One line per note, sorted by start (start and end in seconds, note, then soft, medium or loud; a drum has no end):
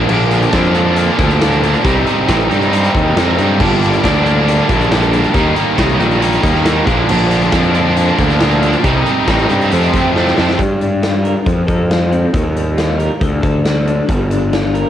0.00 0.10 A#3 medium
0.00 0.11 D4 medium
0.09 0.47 A#1 loud
0.09 0.54 A#2 loud
0.09 0.53 D3 medium
0.09 0.33 F3 medium
0.09 0.32 A#3 loud
0.09 0.30 D4 loud
0.09 crash medium
0.31 0.53 F3 medium
0.31 0.54 A#3 medium
0.31 0.55 D4 medium
0.31 closed hi-hat medium
0.42 closed hi-hat soft
0.52 1.09 F2 loud
0.52 0.76 D3 medium
0.52 0.75 F3 medium
0.52 0.75 A#3 medium
0.52 0.74 D4 medium
0.52 kick medium
0.52 snare loud
0.52 closed hi-hat medium
0.64 closed hi-hat soft
0.74 1.20 A#2 medium
0.74 0.95 D3 medium
0.74 0.96 F3 medium
0.74 0.96 A#3 medium
0.74 0.97 D4 loud
0.74 closed hi-hat medium
0.96 1.62 A#2 medium
0.96 1.40 D3 medium
0.96 1.19 F3 medium
0.96 1.19 A#3 medium
0.96 1.17 D4 medium
0.96 closed hi-hat medium
1.18 1.75 D2 medium
1.18 1.40 F3 medium
1.18 1.41 A#3 medium
1.18 1.41 D4 medium
1.18 kick loud
1.18 closed hi-hat medium
1.30 snare soft
1.30 closed hi-hat soft
1.41 1.83 A#2 medium
1.41 1.83 D3 loud
1.41 1.63 F3 loud
1.41 1.63 A#3 loud
1.41 1.61 D4 loud
1.41 snare loud
1.41 closed hi-hat loud
1.52 closed hi-hat soft
1.63 1.84 F3 medium
1.63 1.84 A#3 medium
1.63 1.83 D4 medium
1.63 closed hi-hat medium
1.74 closed hi-hat soft
1.84 2.03 C2 loud
1.84 2.27 C3 medium
1.84 2.07 G3 medium
1.84 2.06 C4 medium
1.84 2.05 D#4 medium
1.84 kick loud
1.84 closed hi-hat loud
2.06 2.29 G3 medium
2.06 2.28 C4 medium
2.06 2.29 D#4 medium
2.06 closed hi-hat medium
2.28 2.47 A1 loud
2.28 2.50 C3 medium
2.28 2.50 G3 medium
2.28 2.49 C4 medium
2.28 2.48 D#4 medium
2.28 kick medium
2.28 snare loud
2.28 closed hi-hat loud
2.40 closed hi-hat soft
2.49 2.89 G2 loud
2.49 2.70 C3 medium
2.49 2.72 G3 medium
2.49 2.72 C4 medium
2.49 2.72 D#4 loud
2.49 closed hi-hat medium
2.62 closed hi-hat soft
2.71 3.15 C3 medium
2.71 2.96 G3 medium
2.71 2.95 C4 medium
2.71 2.93 D#4 medium
2.71 closed hi-hat medium
2.84 closed hi-hat soft
2.95 3.14 D#2 medium
2.95 3.17 G3 medium
2.95 3.16 C4 medium
2.95 3.17 D#4 medium
2.95 kick loud
2.95 closed hi-hat medium
3.16 3.36 F2 medium
3.16 3.59 C3 medium
3.16 3.40 G3 medium
3.16 3.39 C4 medium
3.16 3.37 D#4 loud
3.16 snare loud
3.16 closed hi-hat loud
3.38 3.61 G2 medium
3.38 3.61 G3 soft
3.38 3.60 C4 medium
3.38 3.59 D#4 medium
3.38 closed hi-hat medium
3.60 3.97 G1 loud
3.60 4.04 G2 medium
3.60 4.03 D3 loud
3.60 3.83 G3 loud
3.60 3.82 A#3 medium
3.60 3.80 D4 medium
3.60 kick loud
3.60 crash loud
3.81 4.04 G3 medium
3.81 4.05 A#3 medium
3.81 4.05 D4 medium
3.81 closed hi-hat medium
3.93 closed hi-hat soft
4.04 4.60 D2 loud
4.04 4.26 D3 medium
4.04 4.26 G3 medium
4.04 4.26 A#3 medium
4.04 4.24 D4 medium
4.04 kick medium
4.04 snare loud
4.04 closed hi-hat medium
4.15 closed hi-hat soft
4.25 4.70 G2 medium
4.25 4.47 D3 medium
4.25 4.48 G3 loud
4.25 4.49 A#3 loud
4.25 4.49 D4 loud
4.25 closed hi-hat medium
4.46 5.12 G2 medium
4.46 4.90 D3 medium
4.46 4.70 G3 medium
4.46 closed hi-hat medium
4.50 4.70 A#3 medium
4.50 4.68 D4 medium
4.69 5.25 A#1 medium
4.69 4.91 G3 medium
4.69 4.92 A#3 medium
4.69 4.92 D4 medium
4.69 kick loud
4.69 closed hi-hat medium
4.81 closed hi-hat soft
4.91 5.33 G2 medium
4.91 5.34 D3 medium
4.91 5.13 G3 loud
4.91 5.14 A#3 medium
4.91 5.12 D4 medium
4.91 snare loud
4.91 closed hi-hat medium
5.02 closed hi-hat soft
5.13 5.34 G3 medium
5.13 5.35 A#3 medium
5.13 5.33 D4 medium
5.13 closed hi-hat medium
5.24 closed hi-hat soft
5.34 5.53 D#2 medium
5.34 5.76 D#3 medium
5.34 5.56 G3 medium
5.34 5.56 A#3 medium
5.34 5.54 D#4 medium
5.34 kick loud
5.34 closed hi-hat medium
5.56 5.77 G3 medium
5.56 5.78 A#3 medium
5.56 5.78 D#4 medium
5.56 closed hi-hat medium
5.78 5.97 C2 loud
5.78 6.00 D#3 medium
5.78 6.00 G3 medium
5.78 6.00 A#3 medium
5.78 5.98 D#4 medium
5.78 kick medium
5.78 snare loud
5.78 closed hi-hat loud
5.90 closed hi-hat soft
5.99 6.37 A#1 medium
5.99 6.20 D#3 medium
5.99 6.21 G3 medium
5.99 6.22 A#3 medium
5.99 6.22 D#4 medium
5.99 closed hi-hat medium
6.11 closed hi-hat soft
6.22 6.64 D#3 medium
6.22 6.43 G3 medium
6.22 6.43 A#3 medium
6.22 6.42 D#4 medium
6.22 closed hi-hat loud
6.32 closed hi-hat medium
6.43 6.81 D#2 medium
6.43 6.65 G3 medium
6.43 6.65 A#3 medium
6.43 6.65 D#4 medium
6.43 kick medium
6.43 closed hi-hat medium
6.55 snare soft
6.65 6.86 D#3 loud
6.65 6.86 G3 medium
6.65 6.86 A#3 loud
6.65 6.86 D#4 loud
6.65 snare loud
6.65 closed hi-hat loud
6.86 7.06 A#1 medium
6.86 7.06 A#2 medium
6.86 7.08 D3 medium
6.86 7.08 F3 medium
6.86 7.08 A#3 medium
6.86 7.09 D4 medium
6.86 kick loud
6.86 closed hi-hat medium
7.08 7.47 A#1 loud
7.08 7.52 A#2 medium
7.08 7.51 D3 medium
7.08 7.31 F3 medium
7.08 7.30 A#3 loud
7.08 7.29 D4 loud
7.08 crash loud
7.30 7.52 F3 medium
7.30 7.52 A#3 medium
7.30 7.53 D4 medium
7.30 closed hi-hat medium
7.42 closed hi-hat soft
7.52 8.09 F2 loud
7.52 7.75 D3 medium
7.52 7.74 F3 medium
7.52 7.74 A#3 medium
7.52 7.73 D4 medium
7.52 kick medium
7.52 snare loud
7.52 closed hi-hat loud
7.63 closed hi-hat soft
7.74 8.19 A#2 medium
7.74 7.95 D3 medium
7.74 7.96 F3 medium
7.74 7.96 A#3 loud
7.74 7.97 D4 medium
7.74 closed hi-hat medium
7.96 8.62 A#2 medium
7.96 8.40 D3 medium
7.96 8.19 F3 medium
7.96 8.18 A#3 medium
7.96 8.17 D4 medium
7.96 closed hi-hat loud
8.18 8.75 D2 medium
8.18 8.40 F3 medium
8.18 8.41 A#3 medium
8.18 8.41 D4 medium
8.18 kick medium
8.18 closed hi-hat medium
8.30 snare soft
8.30 closed hi-hat soft
8.40 8.83 A#2 loud
8.40 8.83 D3 loud
8.40 8.63 F3 loud
8.40 8.62 A#3 loud
8.40 8.61 D4 loud
8.40 snare loud
8.40 closed hi-hat medium
8.51 closed hi-hat soft
8.62 8.84 F3 medium
8.62 8.83 A#3 medium
8.62 8.83 D4 medium
8.62 closed hi-hat medium
8.73 closed hi-hat soft
8.83 9.03 C2 medium
8.83 9.27 C3 medium
8.83 9.07 G3 medium
8.83 9.06 C4 medium
8.83 9.05 D#4 loud
8.83 kick loud
8.83 closed hi-hat loud
9.06 9.27 G3 medium
9.06 9.28 C4 medium
9.06 9.29 D#4 medium
9.06 closed hi-hat medium
9.27 9.46 A1 loud
9.27 9.51 C3 medium
9.27 9.50 G3 medium
9.27 9.50 C4 medium
9.27 9.49 D#4 medium
9.27 kick medium
9.27 snare loud
9.27 closed hi-hat loud
9.39 closed hi-hat soft
9.49 9.69 G2 medium
9.49 9.72 C3 medium
9.49 9.71 G3 medium
9.49 9.71 C4 medium
9.49 9.71 D#4 medium
9.49 closed hi-hat medium
9.61 closed hi-hat soft
9.71 10.15 F2 loud
9.71 9.91 F2 loud
9.71 10.16 C3 medium
9.71 9.95 F3 medium
9.71 9.95 A3 loud
9.71 9.93 C4 loud
9.71 closed hi-hat medium
9.83 closed hi-hat soft
9.94 10.31 F2 medium
9.94 10.17 F3 medium
9.94 10.17 A3 medium
9.94 10.17 C4 medium
9.94 kick medium
9.94 closed hi-hat medium
10.16 10.58 F2 medium
10.16 10.59 C3 medium
10.16 10.39 F3 loud
10.16 10.38 A3 loud
10.16 10.37 C4 loud
10.16 snare medium
10.27 snare medium
10.38 10.57 F2 medium
10.38 10.59 F3 medium
10.38 10.59 A3 medium
10.38 10.58 C4 medium
10.38 snare medium
10.49 snare medium
10.59 11.34 G2 medium
10.59 11.46 G3 medium
10.59 kick loud
10.59 closed hi-hat medium
10.81 11.46 D4 medium
10.81 closed hi-hat medium
11.02 11.46 F4 medium
11.02 snare loud
11.02 closed hi-hat medium
11.24 11.46 A#4 medium
11.24 closed hi-hat medium
11.45 11.65 F2 medium
11.45 12.33 F3 medium
11.45 kick loud
11.45 closed hi-hat medium
11.67 12.24 F2 medium
11.67 12.33 A4 medium
11.67 kick medium
11.67 closed hi-hat medium
11.90 12.34 F4 medium
11.90 snare loud
11.90 closed hi-hat medium
12.11 12.34 C4 medium
12.11 closed hi-hat medium
12.33 13.08 D#2 medium
12.33 13.21 D#3 medium
12.33 kick loud
12.33 closed hi-hat medium
12.55 13.21 G3 medium
12.55 closed hi-hat medium
12.77 13.21 F4 medium
12.77 snare loud
12.77 closed hi-hat medium
12.98 13.21 A#4 medium
12.98 closed hi-hat medium
13.21 13.40 D2 medium
13.21 14.07 D3 medium
13.21 kick loud
13.21 closed hi-hat medium
13.42 13.99 D2 medium
13.42 14.08 A4 medium
13.42 kick medium
13.42 closed hi-hat medium
13.64 14.09 F#4 medium
13.64 snare loud
13.64 closed hi-hat medium
13.86 14.08 D4 medium
13.86 closed hi-hat medium
14.07 14.84 G1 loud
14.07 14.89 G3 medium
14.07 kick loud
14.07 closed hi-hat medium
14.30 14.89 D4 medium
14.30 closed hi-hat medium
14.52 14.89 F4 medium
14.52 snare loud
14.52 closed hi-hat medium
14.64 snare soft
14.74 14.89 A#4 medium
14.74 closed hi-hat medium